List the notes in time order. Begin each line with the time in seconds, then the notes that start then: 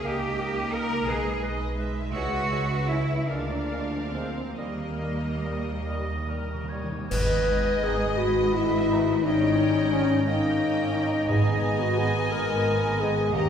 Already playing: A#3
0.02 C#2 A#3 D#4 G4 A#4 D#5 G5
0.39 A#3 A#4 D#5
0.72 A#3 A#4 D#5 A#5
1.07 B1 G#3 G#4 B4 D#5 G#5
1.42 G#3 B4 D#5
1.78 G#3 B4 D#5 E5
2.12 C#2 G#3 E4 F#4 B4 C#5 E5 F#5
2.51 G#3 C#5 E5
2.88 G#3 E4 C#5 E5
3.29 D2 F3 A#3 D4 G#4 A#4 D5 F5
3.33 G#3
3.71 G#3 A#4 F5
4.13 G#3 C4 A#4 C5 F5
4.56 D#2 D#3 G3 A#3 G4 A#4 D#5
4.66 D#3
4.75 D#3
4.84 D#3
4.98 G3 A#4 D#5
5.20 D#3
5.43 G3 A#4 D#5
5.56 D#3
5.65 D#3
5.73 D#3
5.82 D#3 A#4 D#5
5.89 D#3 G3
6.00 D#3
6.09 D#3
6.18 D#3
6.27 D#3 G3 A#4
6.31 A#4
6.36 D#3
6.45 D#3
6.54 D#3
6.64 D#3
6.69 G3 C#5
6.73 D#3 A#4
6.82 D#3
6.91 D#3
6.99 D#3
7.09 G#1 G#2 G#3 B3 B4 D#5 G#5, concert bass drum, crash
7.13 B4
7.83 D#3 D#4 G#4
8.17 B3 F#4 B4 B5
8.53 E4 E5
8.91 D#3 D#4
9.24 G3 C#4 D#4 C#5 D#5 G5 A#5
9.91 D#3 C#4
10.23 C#4 D#4 D#5 G5
10.27 A#3 D#4
10.95 D#3 C#4 D#4
11.28 G#1 G#2 B3 G#4 D#5 G#5
11.78 F#4
11.98 D#3 B3 G#4
12.32 G#3 A#4 D#5
13.00 D#3 B3 G#4
13.34 D#2 D#3 A#3 C#4 G4 D#5 G5 A#5